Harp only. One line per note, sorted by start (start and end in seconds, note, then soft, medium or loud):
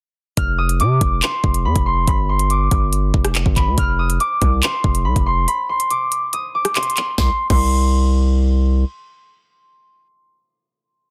0.37 1.47 F6 loud
0.58 0.86 D#6 medium
0.80 2.02 D6 medium
1.22 1.71 C6 medium
1.65 1.92 B5 medium
1.86 2.14 C6 medium
2.08 2.35 B5 loud
2.29 3.62 C6 medium
2.50 3.72 D6 medium
3.56 4.69 B5 medium
3.78 4.88 F6 loud
3.99 4.26 D#6 medium
4.20 5.42 D6 medium
4.63 5.11 C6 medium
5.05 5.32 B5 medium
5.26 5.54 C6 medium
5.48 5.75 B5 loud
5.69 6.75 C6 medium
5.90 6.39 D6 medium
6.33 6.61 D#6 medium
6.55 7.77 D6 medium
6.75 7.18 C6 medium
7.18 7.50 C6 medium
7.50 8.81 C6 medium